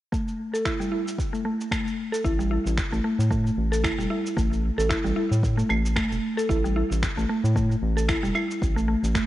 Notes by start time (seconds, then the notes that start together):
0.12 A3, kick, shaker
0.28 shaker
0.53 A4, shaker
0.65 E4, finger snap, kick, shaker
0.80 G3, shaker
0.92 E4
1.08 shaker
1.19 kick, shaker
1.33 A3, shaker
1.45 A3
1.61 shaker
1.72 A3, finger snap, kick, shaker
1.87 shaker
2.12 A4, shaker
2.24 A1 E4, kick, shaker
2.39 G3, shaker
2.51 E4
2.66 A1, shaker
2.78 finger snap, kick, shaker
2.92 A1 A3, shaker
3.04 A3
3.19 A2, shaker
3.31 A3, kick, shaker
3.47 shaker
3.57 A1
3.72 A4, shaker
3.84 E4, finger snap, kick, shaker
3.98 E1 G3, shaker
4.10 E4
4.26 shaker
4.37 A1 A3, kick, shaker
4.53 shaker
4.78 A1 A4, shaker
4.89 E4, finger snap, kick, shaker
5.04 A1 G3, shaker
5.16 E4
5.31 A2, shaker
5.43 kick, shaker
5.57 A3, shaker
5.69 A1 A3, claves
5.86 shaker
5.96 A3, finger snap, kick, shaker
6.11 E1, shaker
6.37 A4, shaker
6.49 A1 E4, kick, shaker
6.64 G3, shaker
6.76 E4
6.91 A1, shaker
7.03 finger snap, kick, shaker
7.17 A1 A3, shaker
7.29 A3
7.44 A2, shaker
7.56 A3, kick, shaker
7.71 shaker
7.82 A1
7.97 A4, shaker
8.08 E4, finger snap, kick, shaker
8.23 E1 G3, shaker
8.35 E4, claves
8.51 shaker
8.62 A1, kick, shaker
8.76 A3, shaker
8.88 A3
9.03 A1, shaker
9.15 A3, finger snap, kick, shaker